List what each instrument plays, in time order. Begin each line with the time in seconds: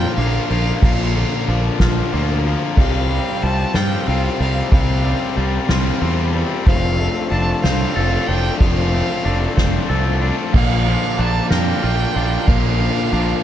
Already playing: distorted electric guitar A#2 D3 F3 A#3 F4, clean electric guitar D3 F3 A#3, harmonium D4 F4 A#4 F5, violin G5
0.16 fingered electric bass A#1, distorted electric guitar D3 F3 A#3 F4, violin F5, ride
0.49 fingered electric bass A#1, distorted electric guitar F3 A#3 F4, violin F5, ride
0.82 fingered electric bass A#1, distorted electric guitar A#2 D3 F3 A#3 F4, violin F5, kick, ride
1.15 clean electric guitar D3, distorted electric guitar F3 A#3 F4, ride
1.47 fingered electric bass A#1, distorted electric guitar D3 F3 A#3 F4, ride
1.80 fingered electric bass A#1, distorted electric guitar F3 A#3 F4, kick, snare, ride
2.12 fingered electric bass D2, distorted electric guitar D3 F3 A#3 F4, ride
2.44 distorted electric guitar F3 A#3 F4, ride
2.77 fingered electric bass C2, distorted electric guitar C3 G3 C4 F4, harmonium G4 C5 G5, violin F5, kick, crash
3.10 distorted electric guitar G3 C4 F4, ride
3.42 fingered electric bass C2, distorted electric guitar C3 G3 C4 F4, violin A5, ride
3.74 fingered electric bass G2, distorted electric guitar G3 C4 F4, violin G5, snare, ride
4.07 fingered electric bass C2, distorted electric guitar C3 G3 C4 F4, violin F5, ride
4.39 fingered electric bass C2, distorted electric guitar G3 C4 F4, violin F5, ride
4.72 fingered electric bass C2, distorted electric guitar C3 G3 C4 F4, harmonium A#4, violin F5, kick, ride
5.04 distorted electric guitar G3 C4 F4, ride
5.36 fingered electric bass C2, distorted electric guitar C3 G3 C4 F4, ride
5.68 fingered electric bass C2, distorted electric guitar G3 C4 F4, snare, ride
6.01 fingered electric bass E2, distorted electric guitar C3 G3 C4 F4, ride
6.33 distorted electric guitar G3 C4 F4, ride
6.65 fingered electric bass F1, distorted electric guitar F3 A3 C4 F4, harmonium D4 A4 C5 F5, violin F5, kick, crash
6.98 distorted electric guitar A3 C4 F4, ride
7.30 fingered electric bass F1, distorted electric guitar F3 A3 C4 F4, clean electric guitar D4, violin A5, ride
7.63 fingered electric bass C2, distorted electric guitar A3 C4 F4, clean electric guitar C5, violin F5, snare, ride
7.96 fingered electric bass F1, distorted electric guitar F3 A3 C4 F4, clean electric guitar A4, ride
8.27 fingered electric bass F1, distorted electric guitar C4 F4, clean electric guitar D4, violin G5, ride
8.31 distorted electric guitar A3
8.59 fingered electric bass F1, distorted electric guitar F3 A3 C4 F4, harmonium D5, violin F5, kick, ride
8.93 distorted electric guitar A3 C4 F4, ride
9.25 fingered electric bass F1, distorted electric guitar F3 A3 C4 F4, clean electric guitar D4, ride
9.57 fingered electric bass F1, distorted electric guitar A3 C4 F4, clean electric guitar C5, kick, snare, ride
9.89 fingered electric bass C2, distorted electric guitar F3 A3 C4 F4, clean electric guitar A4, ride
10.21 distorted electric guitar A3 C4 F4, clean electric guitar D4, ride
10.54 fingered electric bass A#1, distorted electric guitar A#2 D3 F3 A#3 D4 F4, harmonium F4 A#4, violin F5, kick, crash
10.86 clean electric guitar F3, distorted electric guitar F3 A#3 D4 F4, ride
11.18 fingered electric bass A#1, distorted electric guitar D3 F3 A#3 D4 F4, violin A5, ride
11.50 fingered electric bass F2, distorted electric guitar F3 A#3 D4 F4, clean electric guitar A#4, violin G5, snare, ride
11.82 fingered electric bass A#1, distorted electric guitar D3 F3 A#3 D4 F4, ride
12.15 fingered electric bass A#1, distorted electric guitar F3 A#3 D4 F4, ride
12.47 fingered electric bass A#1, distorted electric guitar A#2 D3 F3 A#3 D4 F4, violin F5, kick, ride
12.80 clean electric guitar F3, distorted electric guitar F3 A#3 D4 F4, ride
13.12 fingered electric bass A#1, distorted electric guitar D3 F3 A#3 D4 F4, ride